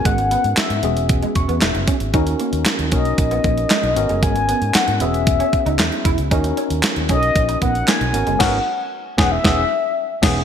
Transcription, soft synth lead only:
X:1
M:4/4
L:1/16
Q:1/4=115
K:Elyd
V:1 name="Soft synth lead"
f4 e4 z8 | z6 d2 d8 | g4 f2 e8 z2 | z6 d4 f2 g4 |
f4 z2 f e6- e z2 |]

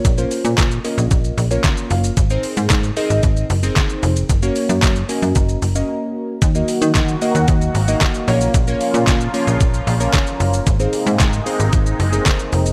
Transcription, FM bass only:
X:1
M:4/4
L:1/16
Q:1/4=113
K:Bbm
V:1 name="FM bass" clef=bass
B,,,2 z B,, B,,2 z B,,, B,,,2 B,,,2 z2 G,,,2 | A,,,2 z A,, A,,2 z A,,, A,,,2 G,,,2 z2 F,,,2 | G,,,2 z G,, G,,2 z G,, G,,,2 G,,,2 z4 | E,,2 z E, E,2 z E,, E,,2 A,,,2 z2 B,,,2 |
B,,,2 z B,, B,,2 z B,,, B,,,2 B,,,2 z2 G,,,2 | A,,,2 z A,, A,,2 z A,,, A,,,2 G,,,2 z2 F,,,2 |]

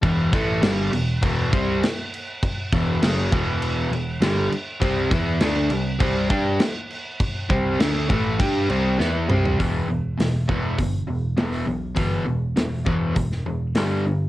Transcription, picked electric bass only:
X:1
M:4/4
L:1/8
Q:1/4=101
K:Em
V:1 name="Picked electric bass" clef=bass
E,,, A,,, G,,, E,,, E,,, C,, z2 | z E,,, F,,, E,,,2 E,,, G,,, z | C,, E,, D,, C,, C,, G,, z2 | z C,, D,, A,,, G,, C,, E,, C,, |
E,,, E,,, E,,, E,,, G,,, E,,, E,,, B,,, | G,,, E,,, E,,, E,, E,,, E,,, G,,,2 |]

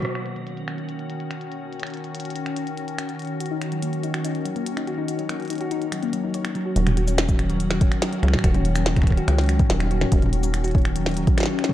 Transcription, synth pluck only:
X:1
M:4/4
L:1/16
Q:1/4=143
K:D#phr
V:1 name="Synth pluck"
z16 | z16 | F D z F, A, z D F D z F, A, z D F D | z F, A, z D F D z F, A, F, D c A, F, F |
F, z F C z F, F, F, z F C z F, F, F, z | F C z F, F, F, z F C z F, F, F, z F C | z F, F, F, z F C z F, F, F, z F C z F, |]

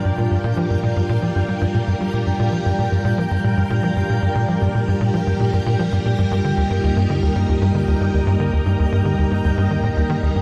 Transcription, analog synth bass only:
X:1
M:4/4
L:1/16
Q:1/4=115
K:Gm
V:1 name="Analog synth bass" clef=bass
G,, B,, G,, B,, F, G,, B,, G,, B,, F, G,, G, G,, B,, G,, G, | B,, G,, B,, F, G,, B,, G,, B,, F, G,, B,, G,, B,, F, G,, B,, | G,, B,, F, G,, B,, G,, B,, F, G,, B,, G,, B,, F, G,, B,, G,, | G,, D, E,, G,, E,, G,, D, E,, G,, E,, G,, D, E,, G,, E,, G,, |
D, E,, G,, E,, G,, D, E,, G,, E,, G,, E, A,, E,, E, E,, G,, |]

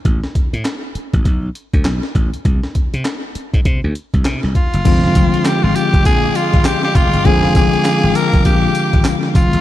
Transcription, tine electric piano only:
X:1
M:4/4
L:1/8
Q:"Swing 16ths" 1/4=100
K:Amix
V:1 name="Tine electric piano" clef=bass
z8 | z8 | [K:Fdor] [D,F,A,CF]8 | [D,F,A,CF]8 |]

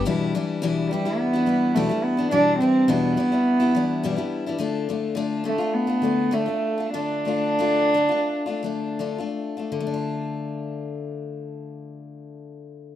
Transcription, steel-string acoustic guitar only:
X:1
M:4/4
L:1/16
Q:1/4=102
K:Ddor
V:1 name="Steel-string acoustic guitar"
[E,,B,,E,G,DE]2 [E,G,DE]2 [E,,B,,E,G,DE]2 [E,G,DE] [E,G,DE]2 [E,G,DE] [E,G,DE]2 [E,,B,,E,G,DE] [E,G,DE]2 [E,G,DE] | [E,,B,,E,G,DE]2 [E,G,DE]2 [E,,B,,E,G,DE]2 [E,G,DE] [E,G,DE]2 [E,G,DE] [E,G,DE]2 [E,,B,,E,G,DE] [E,G,DE]2 [E,G,DE] | [D,A,DF]2 [D,A,DF]2 [D,A,DF]2 [D,A,DF] [A,DF]2 [A,DF] [D,A,DF]2 [D,A,DF] [A,DF]2 [A,DF] | [D,A,DF]2 [D,A,DF]2 [D,A,DF]2 [D,A,DF] [A,DF]2 [A,DF] [D,A,DF]2 [D,A,DF] [A,DF]2 [A,DF] |
[D,A,DF]16 |]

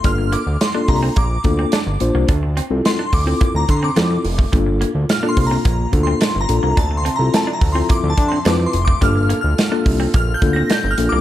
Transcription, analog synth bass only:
X:1
M:4/4
L:1/16
Q:1/4=107
K:Gdor
V:1 name="Analog synth bass" clef=bass
G,,,3 D,, z2 C,,2 B,,,2 D,,2 z G,,, B,,, C,, | D,,3 C,, z2 D,,2 z D,, D,2 F,,2 F,,,2 | G,,,3 D,, z2 C,,2 B,,,2 D,,2 z G,,, B,,, C,, | D,,3 C,, z2 D,,2 z D,, D,2 F,,2 F,,,2 |
G,,,3 D,, z2 C,,2 B,,,2 D,,2 z G,,, B,,, C,, |]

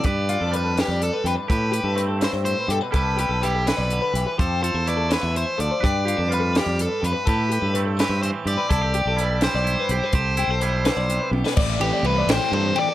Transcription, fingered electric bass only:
X:1
M:6/8
L:1/16
Q:3/8=83
K:C
V:1 name="Fingered electric bass" clef=bass
G,,3 F,,4 F,,2 z F,, z | A,,3 G,,4 G,,2 z G,, z | C,,3 B,,,4 B,,,2 z B,,, z | F,,3 E,,4 E,,2 z D,, z |
G,,3 F,,4 F,,2 z F,, z | A,,3 G,,4 G,,2 z G,, z | C,,3 B,,,4 B,,,2 z B,,, z | C,,3 B,,,4 B,,,2 z B,,, z |
A,,,2 A,,, z C,,2 A,,, z G,,2 z2 |]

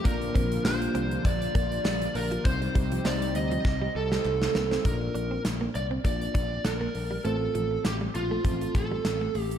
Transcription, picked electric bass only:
X:1
M:4/4
L:1/8
Q:"Swing 16ths" 1/4=100
K:Bb
V:1 name="Picked electric bass" clef=bass
B,,, B,,, B,,, C,, B,,, B,,, B,,, B,,, | C,, C,, C,, D,, C,, C,, C,, C,, | B,,, B,,, B,,, C,, B,,, B,,, B,,, B,,, | A,,, A,,, A,,, B,,, A,,, A,,, A,,, A,,, |]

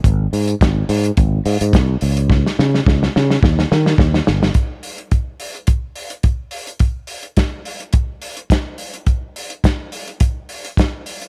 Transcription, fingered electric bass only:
X:1
M:4/4
L:1/16
Q:1/4=106
K:D#phr
V:1 name="Fingered electric bass" clef=bass
G,,,2 G,,2 G,,,2 G,,2 G,,,2 G,, G,, ^B,,,2 C,,2- | C,,2 C,2 C,,2 C,2 D,,2 D,2 D,,2 =G,,,2 | z16 | z16 |
z16 |]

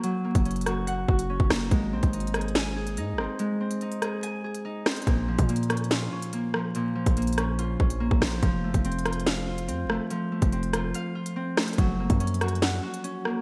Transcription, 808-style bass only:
X:1
M:4/4
L:1/16
Q:1/4=143
K:Bbm
V:1 name="808-style bass" clef=bass
z3 G,,,6- G,,, G,,,3 G,,, G,,,2 | A,,,2 B,,, A,,,8- A,,, A,,3/2 A,,,3/2 z | z16 | B,,,3 B,,6- B,, z6 |
z3 B,,,6- B,,, B,,,3 B,,, B,,,2 | F,,,2 G,,, F,,,8- F,,, F,,3/2 F,,,3/2 z | z3 F,,,4- F,,, z8 | G,,,3 G,,6- G,, z6 |]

